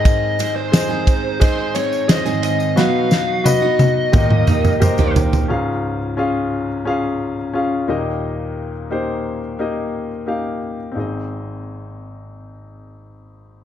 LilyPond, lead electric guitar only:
\new Staff \with { instrumentName = "Lead electric guitar" } { \time 4/4 \key aes \major \tempo 4 = 88 ees''8. c''4~ c''16 c''8 des''8 ees''8 ees''8 | f''4 dis''2~ dis''8 r8 | r1 | r1 |
r1 | }